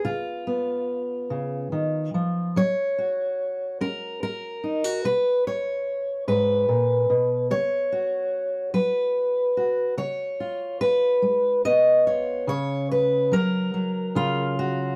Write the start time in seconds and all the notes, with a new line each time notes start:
Already playing: B3
0.05 C#3 F4
0.47 B3
1.30 C#3
1.72 D#3
2.14 F3
2.56 F#3 C#5
2.98 F#4
3.81 C#4 A#4
4.23 A#4
4.64 D#4
4.84 F#4
5.05 B2 B4
5.47 C#5
6.28 G#2 B4
6.69 A#2
7.10 B2
7.51 C#3 C#5
7.92 F#4
8.74 F#3 B4
9.57 F#4
9.97 C#3 C#5
10.40 F4
10.81 B4
11.22 G#3
11.65 B3 D#5
12.06 F4 C#5
12.47 C#3 C#5
12.91 B4
13.32 F#3 A#4
13.74 F#3
14.15 C#3 F4
14.59 F#4